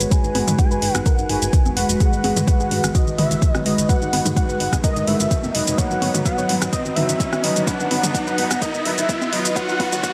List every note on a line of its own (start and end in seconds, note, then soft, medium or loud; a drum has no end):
0.00 0.07 G#1 medium
0.00 5.74 D#3 medium
0.00 0.32 G#3 medium
0.00 5.74 G#3 medium
0.00 0.32 F#4 medium
0.00 9.52 F#4 medium
0.00 0.13 B4 loud
0.00 0.32 B4 loud
0.00 5.74 B4 medium
0.00 closed hi-hat medium
0.00 riser medium
0.00 shaker medium
0.11 0.21 B4 medium
0.11 0.58 G#5 loud
0.11 kick loud
0.11 closed hi-hat medium
0.11 shaker medium
0.24 0.31 G#1 medium
0.24 0.32 D#4 medium
0.24 shaker soft
0.35 0.43 G#1 medium
0.35 0.80 G#3 medium
0.35 0.80 F#4 medium
0.35 0.80 B4 loud
0.35 0.44 B4 medium
0.35 open hi-hat loud
0.35 high conga medium
0.48 0.54 G#2 medium
0.48 0.56 D#4 medium
0.48 closed hi-hat medium
0.48 mid tom medium
0.48 shaker medium
0.59 0.68 D#4 medium
0.59 0.95 G#5 loud
0.59 kick loud
0.59 closed hi-hat medium
0.59 shaker soft
0.71 0.78 G#1 medium
0.71 0.79 B4 medium
0.71 shaker soft
0.82 0.90 G#1 medium
0.82 0.94 G#3 medium
0.82 0.92 D#4 medium
0.82 0.94 F#4 medium
0.82 0.94 B4 medium
0.82 open hi-hat loud
0.95 1.02 G#1 medium
0.95 1.03 D#4 medium
0.95 1.06 F#5 loud
0.95 cross-stick medium
0.95 closed hi-hat medium
0.95 high conga medium
0.95 shaker medium
1.06 1.15 A#4 loud
1.06 1.31 F#5 loud
1.06 kick loud
1.06 closed hi-hat medium
1.06 shaker medium
1.18 1.25 G#1 medium
1.18 1.27 D#4 medium
1.18 shaker soft
1.29 1.37 G#1 medium
1.29 1.41 G#3 medium
1.29 1.39 D#4 medium
1.29 1.41 F#4 medium
1.29 1.41 B4 medium
1.29 1.76 G#5 loud
1.29 open hi-hat loud
1.42 1.49 G#1 medium
1.42 closed hi-hat medium
1.42 shaker medium
1.53 kick loud
1.53 closed hi-hat medium
1.53 shaker medium
1.66 1.72 F#1 medium
1.66 high conga medium
1.66 shaker soft
1.76 1.84 F#1 loud
1.76 2.21 G#3 medium
1.76 2.21 F#4 medium
1.76 2.21 B4 medium
1.76 1.87 F#5 loud
1.76 open hi-hat loud
1.89 1.96 F#1 medium
1.89 closed hi-hat soft
1.89 shaker medium
2.00 2.10 G#4 loud
2.00 2.44 F#5 loud
2.00 kick loud
2.00 closed hi-hat medium
2.00 shaker medium
2.13 2.20 G#1 medium
2.13 2.21 G#3 medium
2.13 shaker soft
2.24 2.31 G#1 loud
2.24 2.69 G#3 loud
2.24 2.69 F#4 medium
2.24 2.33 G#4 medium
2.24 2.69 B4 loud
2.24 open hi-hat loud
2.24 high conga medium
2.36 2.43 G#2 medium
2.36 2.45 G#3 medium
2.36 closed hi-hat soft
2.36 mid tom medium
2.36 shaker medium
2.47 2.57 G#3 medium
2.47 2.96 F#5 loud
2.47 kick loud
2.47 closed hi-hat medium
2.47 shaker medium
2.60 2.67 G#1 medium
2.60 2.68 G#4 medium
2.60 shaker soft
2.71 2.79 G#2 loud
2.71 2.83 G#3 medium
2.71 2.81 G#3 medium
2.71 2.83 F#4 medium
2.71 2.83 B4 medium
2.71 open hi-hat loud
2.84 2.90 G#1 medium
2.84 2.92 G#3 medium
2.84 cross-stick medium
2.84 closed hi-hat medium
2.84 high conga medium
2.84 shaker medium
2.95 3.04 F#4 loud
2.95 3.17 D#5 loud
2.95 kick loud
2.95 closed hi-hat medium
2.95 shaker medium
3.07 3.14 G#1 medium
3.07 3.16 G#3 medium
3.07 shaker soft
3.18 3.26 G#1 loud
3.18 3.30 G#3 medium
3.18 3.28 G#3 medium
3.18 3.30 F#4 medium
3.18 3.30 B4 loud
3.18 3.51 E5 loud
3.18 open hi-hat loud
3.18 mid tom medium
3.31 3.38 G#1 medium
3.31 closed hi-hat soft
3.31 shaker medium
3.42 kick loud
3.42 closed hi-hat medium
3.42 shaker soft
3.51 3.61 G#1 medium
3.51 3.62 D#5 loud
3.51 cross-stick medium
3.51 high conga medium
3.51 shaker soft
3.66 3.73 G#1 medium
3.66 4.10 G#3 medium
3.66 4.10 F#4 medium
3.66 4.10 B4 medium
3.66 3.88 D#5 medium
3.66 open hi-hat loud
3.78 3.85 G#1 medium
3.78 closed hi-hat medium
3.78 shaker medium
3.89 3.99 B4 loud
3.89 4.33 F#5 loud
3.89 kick loud
3.89 closed hi-hat medium
3.89 shaker medium
4.02 4.09 G#1 medium
4.02 4.10 D#4 medium
4.02 shaker soft
4.13 4.21 G#1 loud
4.13 4.58 G#3 medium
4.13 4.58 F#4 medium
4.13 4.58 B4 loud
4.13 4.22 B4 medium
4.13 open hi-hat loud
4.13 high conga medium
4.25 4.32 G#2 medium
4.25 4.34 D#4 medium
4.25 closed hi-hat soft
4.25 mid tom medium
4.25 shaker medium
4.36 4.46 D#4 medium
4.36 4.80 F#5 loud
4.36 kick loud
4.36 closed hi-hat medium
4.36 shaker medium
4.49 4.56 G#1 medium
4.49 4.57 B4 medium
4.49 shaker soft
4.60 4.68 G#1 loud
4.60 4.72 G#3 medium
4.60 4.70 D#4 medium
4.60 4.72 F#4 medium
4.60 4.72 B4 medium
4.60 open hi-hat loud
4.73 4.79 G#1 medium
4.73 4.81 D#4 medium
4.73 kick medium
4.73 cross-stick medium
4.73 closed hi-hat soft
4.73 high conga medium
4.73 shaker medium
4.84 4.93 A#4 medium
4.84 5.09 D#5 loud
4.84 kick loud
4.84 closed hi-hat medium
4.84 shaker medium
4.96 5.03 G#1 medium
4.96 5.05 D#4 medium
4.96 closed hi-hat soft
4.96 shaker soft
5.07 5.15 G#1 loud
5.07 5.19 G#3 medium
5.07 5.17 D#4 medium
5.07 5.19 F#4 medium
5.07 5.19 B4 loud
5.07 5.56 E5 loud
5.07 open hi-hat loud
5.20 5.27 G#1 medium
5.20 closed hi-hat soft
5.20 shaker medium
5.31 kick loud
5.31 closed hi-hat medium
5.31 shaker medium
5.44 5.50 F#1 medium
5.44 high conga medium
5.44 shaker soft
5.54 5.62 F#1 medium
5.54 5.99 F#3 medium
5.54 5.99 D#4 medium
5.54 5.99 B4 loud
5.54 5.79 D#5 loud
5.54 open hi-hat loud
5.67 5.74 F#1 medium
5.67 closed hi-hat soft
5.67 shaker medium
5.78 10.13 D#3 medium
5.78 10.13 B3 medium
5.78 5.88 C#5 loud
5.78 6.25 F#5 loud
5.78 kick loud
5.78 closed hi-hat medium
5.78 shaker medium
5.91 5.98 G#1 medium
5.91 5.99 F#4 medium
5.91 shaker soft
6.02 6.10 G#1 loud
6.02 6.47 F#3 medium
6.02 6.47 D#4 medium
6.02 6.47 B4 loud
6.02 6.11 C#5 medium
6.02 open hi-hat loud
6.02 high conga medium
6.14 6.21 G#2 medium
6.14 6.23 F#4 medium
6.14 closed hi-hat soft
6.14 mid tom medium
6.14 shaker medium
6.25 6.35 F#4 medium
6.25 6.69 F#5 loud
6.25 kick loud
6.25 closed hi-hat medium
6.25 shaker medium
6.38 6.45 G#1 medium
6.38 6.46 C#5 loud
6.38 shaker soft
6.49 6.57 G#2 loud
6.49 6.61 F#3 medium
6.49 6.61 D#4 medium
6.49 6.58 F#4 medium
6.49 6.61 B4 medium
6.49 open hi-hat loud
6.62 6.68 G#1 medium
6.62 6.70 F#4 medium
6.62 cross-stick medium
6.62 closed hi-hat soft
6.62 high conga medium
6.62 shaker medium
6.73 6.82 B4 medium
6.73 6.95 D#5 loud
6.73 kick loud
6.73 closed hi-hat medium
6.73 shaker medium
6.85 6.92 G#1 medium
6.85 6.94 F#4 medium
6.85 shaker soft
6.96 7.04 G#1 loud
6.96 7.08 F#3 medium
6.96 7.08 D#4 medium
6.96 7.06 F#4 medium
6.96 7.08 B4 loud
6.96 7.45 E5 loud
6.96 open hi-hat loud
6.96 mid tom medium
7.09 7.16 G#1 medium
7.09 closed hi-hat soft
7.09 shaker medium
7.20 kick loud
7.20 closed hi-hat medium
7.20 shaker medium
7.33 7.39 G#1 medium
7.33 cross-stick medium
7.33 high conga medium
7.33 shaker soft
7.43 7.51 G#1 loud
7.43 7.88 F#3 medium
7.43 7.88 D#4 medium
7.43 7.88 B4 loud
7.43 7.68 D#5 loud
7.43 open hi-hat loud
7.56 7.63 G#1 medium
7.56 closed hi-hat soft
7.56 shaker medium
7.67 7.77 B4 loud
7.67 8.14 F#5 loud
7.67 kick loud
7.67 closed hi-hat medium
7.67 shaker medium
7.80 7.87 G#1 medium
7.80 7.88 B3 medium
7.80 shaker soft
7.91 7.98 G#1 loud
7.91 8.35 F#3 loud
7.91 8.36 D#4 medium
7.91 8.35 B4 loud
7.91 8.00 B4 medium
7.91 open hi-hat loud
7.91 high conga medium
8.03 8.10 G#2 medium
8.03 8.12 B3 medium
8.03 closed hi-hat medium
8.03 mid tom medium
8.03 shaker medium
8.14 8.24 B3 medium
8.14 8.63 F#5 loud
8.14 kick loud
8.14 closed hi-hat medium
8.14 shaker medium
8.27 8.34 G#1 medium
8.27 8.35 B4 medium
8.27 shaker soft
8.38 8.46 G#1 loud
8.38 8.50 F#3 medium
8.38 8.47 B3 medium
8.38 8.50 D#4 medium
8.38 8.50 B4 medium
8.38 open hi-hat medium
8.51 8.57 G#1 medium
8.51 8.59 B3 medium
8.51 cross-stick medium
8.51 closed hi-hat medium
8.51 high conga medium
8.51 shaker medium
8.62 8.71 A#4 loud
8.62 8.87 D#5 loud
8.62 kick loud
8.62 closed hi-hat medium
8.62 shaker medium
8.74 8.81 G#1 medium
8.74 8.83 B3 medium
8.74 shaker soft
8.85 8.93 G#1 loud
8.85 8.97 F#3 medium
8.85 8.95 B3 medium
8.85 8.97 D#4 medium
8.85 8.97 B4 loud
8.85 9.34 E5 loud
8.85 open hi-hat loud
8.98 9.05 G#1 medium
8.98 closed hi-hat medium
8.98 shaker medium
9.09 kick loud
9.09 closed hi-hat medium
9.09 shaker medium
9.21 9.28 F#1 medium
9.21 high conga medium
9.21 shaker soft
9.32 9.40 F#1 loud
9.32 9.77 F#3 medium
9.32 9.77 D#4 medium
9.32 9.77 B4 loud
9.32 9.55 D#5 loud
9.32 open hi-hat loud
9.45 9.52 F#1 medium
9.45 closed hi-hat medium
9.45 shaker medium
9.56 10.13 G#4 medium
9.56 9.66 B4 loud
9.56 10.00 F#5 loud
9.56 kick loud
9.56 closed hi-hat medium
9.56 shaker medium
9.69 9.76 G#1 medium
9.69 9.77 B3 medium
9.69 shaker soft
9.80 9.87 G#1 loud
9.80 10.13 F#3 loud
9.80 10.13 D#4 medium
9.80 10.13 B4 loud
9.80 9.89 B4 loud
9.80 kick loud
9.80 open hi-hat loud
9.80 high conga medium
9.92 9.99 G#2 medium
9.92 10.01 B3 medium
9.92 closed hi-hat medium
9.92 mid tom medium
9.92 shaker medium
10.03 10.13 B3 medium
10.03 10.13 F#5 loud
10.03 kick loud
10.03 closed hi-hat medium
10.03 shaker medium